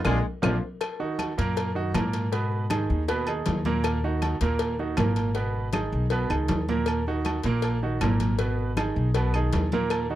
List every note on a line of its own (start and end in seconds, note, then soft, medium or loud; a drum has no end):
0.05 0.19 A#1 loud
0.05 0.25 G#3 medium
0.05 0.17 A#3 loud
0.05 0.17 D4 loud
0.05 0.17 F4 loud
0.05 cowbell medium
0.05 high conga loud
0.05 high timbale loud
0.05 claves loud
0.42 0.57 A#1 loud
0.42 0.63 F3 medium
0.42 0.55 A#3 medium
0.42 0.55 D4 medium
0.42 0.55 F4 medium
0.42 cowbell medium
0.42 high conga loud
0.42 high timbale loud
0.42 claves loud
0.81 cowbell loud
0.81 high conga soft
0.81 low agogo medium
0.81 claves medium
1.00 1.31 D#3 medium
1.00 1.31 D#4 medium
1.00 1.31 F#4 medium
1.00 high conga soft
1.19 cowbell medium
1.19 high conga medium
1.19 low timbale medium
1.19 low agogo loud
1.19 claves medium
1.38 1.91 F#2 loud
1.38 1.69 A#2 medium
1.38 1.69 A#3 loud
1.38 1.69 A#4 medium
1.38 cowbell medium
1.38 high conga soft
1.57 cowbell loud
1.57 high conga soft
1.57 low agogo medium
1.75 1.91 D#3 medium
1.75 1.91 D#4 medium
1.75 1.92 F#4 medium
1.75 high conga soft
1.94 2.84 G#2 medium
1.94 2.26 A#2 medium
1.94 2.26 A#3 medium
1.94 2.26 A#4 medium
1.94 cowbell medium
1.94 high conga medium
1.94 low timbale loud
1.94 low agogo loud
1.94 claves medium
2.13 cowbell medium
2.13 low agogo medium
2.32 2.63 B2 medium
2.32 2.64 B3 medium
2.32 2.64 B4 medium
2.32 cowbell loud
2.32 high conga soft
2.52 high conga soft
2.70 3.02 D#3 medium
2.70 3.02 D#4 medium
2.70 3.02 G#4 medium
2.70 cowbell medium
2.70 high conga loud
2.70 low timbale medium
2.70 low agogo loud
2.70 claves medium
2.90 3.43 D#2 loud
2.90 high conga soft
3.08 3.24 B2 medium
3.08 3.24 B3 medium
3.08 3.24 B4 medium
3.08 cowbell loud
3.08 high conga soft
3.08 low agogo medium
3.27 3.59 D#3 medium
3.27 3.59 D#4 medium
3.27 3.59 G#4 medium
3.27 high conga soft
3.27 low agogo loud
3.27 claves medium
3.46 4.36 D#2 loud
3.46 cowbell medium
3.46 high conga medium
3.46 low timbale medium
3.46 low agogo medium
3.65 3.97 A#2 loud
3.65 3.97 A#3 loud
3.65 3.97 A#4 loud
3.65 high conga medium
3.65 low agogo medium
3.84 cowbell loud
3.84 high conga soft
3.84 low agogo loud
3.84 claves medium
4.04 4.35 D#3 medium
4.04 4.35 D#4 medium
4.04 4.35 F#4 medium
4.04 high conga soft
4.22 cowbell medium
4.22 high conga medium
4.22 low timbale medium
4.22 low agogo loud
4.22 claves medium
4.41 4.94 D#2 medium
4.41 4.73 A#2 medium
4.41 4.73 A#3 medium
4.41 4.73 A#4 medium
4.41 cowbell medium
4.59 cowbell loud
4.59 high conga soft
4.59 low agogo medium
4.79 4.95 D#3 medium
4.79 4.95 D#4 medium
4.79 4.95 F#4 medium
4.79 high conga soft
4.97 5.87 G#1 medium
4.97 5.29 A#2 medium
4.97 5.29 A#3 medium
4.97 5.29 A#4 medium
4.97 cowbell medium
4.97 high conga medium
4.97 low timbale loud
4.97 low agogo loud
4.97 claves medium
5.16 cowbell medium
5.16 low agogo medium
5.35 5.67 B2 medium
5.35 5.67 B3 medium
5.35 5.67 B4 medium
5.35 cowbell medium
5.35 high conga soft
5.54 high conga soft
5.73 6.05 D#3 medium
5.73 6.05 D#4 medium
5.73 6.05 G#4 medium
5.73 cowbell medium
5.73 high conga loud
5.73 low timbale medium
5.73 low agogo loud
5.73 claves medium
5.92 6.28 B1 loud
5.92 high conga soft
6.10 6.27 B2 medium
6.10 6.27 B3 medium
6.10 6.27 B4 medium
6.10 cowbell loud
6.10 high conga soft
6.10 low agogo medium
6.30 6.48 C#2 medium
6.30 6.61 D#3 medium
6.30 6.62 D#4 medium
6.30 6.62 G#4 medium
6.30 high conga soft
6.30 low agogo loud
6.30 claves medium
6.48 7.38 D#2 medium
6.48 cowbell medium
6.48 high conga medium
6.48 low timbale medium
6.48 low agogo medium
6.68 7.00 A#2 loud
6.68 7.00 A#3 medium
6.68 7.00 A#4 loud
6.68 high conga medium
6.68 low agogo medium
6.86 cowbell loud
6.86 low agogo loud
6.86 claves medium
7.07 7.38 D#3 medium
7.07 7.38 D#4 medium
7.07 7.38 F#4 medium
7.07 high conga soft
7.25 cowbell medium
7.25 high conga medium
7.25 low timbale medium
7.25 low agogo loud
7.25 claves medium
7.43 7.97 A#1 medium
7.43 7.76 A#2 loud
7.43 7.76 A#3 loud
7.43 7.76 A#4 medium
7.43 cowbell medium
7.43 high conga soft
7.62 cowbell loud
7.62 low agogo medium
7.82 7.98 D#3 medium
7.82 7.98 D#4 medium
7.82 7.99 F#4 medium
7.82 high conga soft
8.01 8.90 G#1 loud
8.01 8.33 A#2 medium
8.01 8.33 A#3 medium
8.01 8.33 A#4 medium
8.01 cowbell medium
8.01 high conga medium
8.01 low timbale medium
8.01 low agogo loud
8.01 claves medium
8.20 cowbell medium
8.20 high conga medium
8.20 low agogo medium
8.39 8.70 B2 medium
8.39 8.71 B3 medium
8.39 8.71 B4 medium
8.39 cowbell loud
8.39 high conga soft
8.59 high conga soft
8.77 9.09 D#3 medium
8.77 9.09 D#4 medium
8.77 9.09 G#4 medium
8.77 cowbell medium
8.77 high conga medium
8.77 low timbale medium
8.77 low agogo loud
8.77 claves medium
8.96 9.49 B1 medium
8.96 high conga soft
9.15 9.31 B2 medium
9.15 9.31 B3 medium
9.15 9.31 B4 medium
9.15 cowbell loud
9.15 high conga soft
9.15 low agogo medium
9.34 9.66 D#3 medium
9.34 9.66 D#4 medium
9.34 9.66 G#4 medium
9.34 high conga soft
9.34 low agogo loud
9.34 claves medium
9.53 10.15 D#2 medium
9.53 cowbell medium
9.53 high conga medium
9.53 low timbale medium
9.53 low agogo medium
9.72 10.04 A#2 loud
9.72 10.04 A#3 loud
9.72 10.04 A#4 medium
9.72 high conga loud
9.72 low agogo medium
9.90 cowbell loud
9.90 high conga soft
9.90 low agogo loud
9.90 claves medium
10.10 10.15 D#3 medium
10.10 10.15 D#4 medium
10.10 10.15 F#4 medium
10.10 high conga soft